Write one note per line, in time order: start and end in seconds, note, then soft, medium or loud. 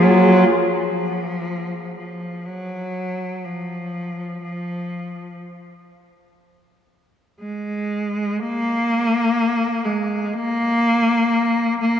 0.00 0.54 F#3 medium
0.00 0.47 A#3 medium
0.00 0.49 F4 medium
0.00 0.55 G#4 medium
0.53 1.96 F3 loud
1.97 2.47 F3 medium
2.45 3.46 F#3 loud
3.45 4.41 F3 medium
4.42 5.37 F3 medium
7.40 8.40 G#3 medium
8.39 9.86 A#3 loud
9.85 10.35 G#3 medium
10.34 11.80 A#3 loud
11.81 12.00 A#3 medium